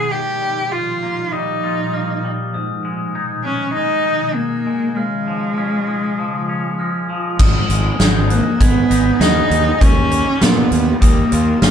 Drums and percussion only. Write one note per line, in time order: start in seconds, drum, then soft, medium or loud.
7.39 kick medium
7.39 crash medium
7.70 closed hi-hat soft
8.00 snare medium
8.00 closed hi-hat medium
8.30 closed hi-hat soft
8.61 kick medium
8.61 closed hi-hat medium
8.91 closed hi-hat soft
9.21 snare medium
9.21 closed hi-hat medium
9.51 closed hi-hat soft
9.81 kick medium
9.81 closed hi-hat medium
10.11 closed hi-hat soft
10.41 snare medium
10.41 closed hi-hat medium
10.72 closed hi-hat soft
11.02 kick medium
11.02 closed hi-hat medium
11.32 closed hi-hat soft
11.62 snare medium
11.62 closed hi-hat medium